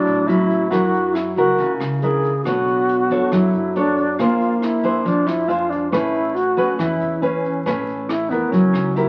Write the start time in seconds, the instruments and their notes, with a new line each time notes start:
Already playing: nylon-string guitar A2 F#3 E4, alto flute D4
0.07 upright bass A1, closed hi-hat
0.27 nylon-string guitar F#3 C#4 E4, alto flute E4, closed hi-hat
0.50 kick, closed hi-hat
0.70 upright bass F#2, nylon-string guitar F#3 D4 E4 A#4, alto flute F#4, kick, cross-stick, closed hi-hat
0.94 closed hi-hat
1.13 alto flute E4, cross-stick, closed hi-hat
1.36 upright bass C#2, nylon-string guitar E4 A#4, alto flute F#4, kick, closed hi-hat
1.58 upright bass C#2, nylon-string guitar C#3, kick, closed hi-hat
1.80 upright bass C#2, cross-stick, closed hi-hat
2.01 nylon-string guitar D4 E4 A#4, alto flute G#4, closed hi-hat
2.24 kick, closed hi-hat
2.44 upright bass B1, nylon-string guitar B3 D4 A4 C#5, alto flute F#4, kick, cross-stick, closed hi-hat
2.67 closed hi-hat
2.89 closed hi-hat
3.10 upright bass F#2, nylon-string guitar D4 A4 C#5, kick, closed hi-hat
3.31 upright bass F#2, nylon-string guitar F#3, alto flute E4, kick, cross-stick, closed hi-hat
3.53 upright bass F#2, closed hi-hat
3.75 alto flute D4, nylon-string guitar D4 A4 C#5, closed hi-hat
3.97 kick, closed hi-hat
4.18 upright bass A#1, nylon-string guitar A#3 D4 G#4 C5, alto flute F4, kick, cross-stick, closed hi-hat
4.41 closed hi-hat
4.61 alto flute E4, cross-stick, closed hi-hat
4.83 upright bass F2, nylon-string guitar D4 G#4 C5, kick, closed hi-hat
5.05 upright bass F2, nylon-string guitar F3, alto flute D4, kick, closed hi-hat
5.27 upright bass F2, alto flute E4, cross-stick, closed hi-hat
5.48 nylon-string guitar D4 G#4 C5, alto flute F4, closed hi-hat
5.69 alto flute D4, kick, closed hi-hat
5.91 upright bass A1, nylon-string guitar A3 C#4 G#4 B4, alto flute E4, kick, cross-stick, closed hi-hat
6.15 closed hi-hat
6.35 alto flute F#4, closed hi-hat
6.57 upright bass E2, nylon-string guitar C#4 G#4 B4, kick, closed hi-hat
6.78 upright bass E2, nylon-string guitar E3, alto flute E4, kick, cross-stick, closed hi-hat
7.00 upright bass E2, closed hi-hat
7.22 alto flute C#4, nylon-string guitar C#4 G#4 B4, closed hi-hat
7.44 kick, closed hi-hat
7.66 upright bass A1, nylon-string guitar A3 C#4 G#4 B4, kick, cross-stick, closed hi-hat
7.88 closed hi-hat
8.08 alto flute E4, cross-stick, closed hi-hat
8.29 upright bass E2, alto flute B3, nylon-string guitar E4 A#4, kick, closed hi-hat
8.51 upright bass F#1, nylon-string guitar F#3, alto flute C#4, kick, closed hi-hat
8.73 upright bass C#2, cross-stick, closed hi-hat
8.95 alto flute E4, nylon-string guitar E4 G4 A#4, closed hi-hat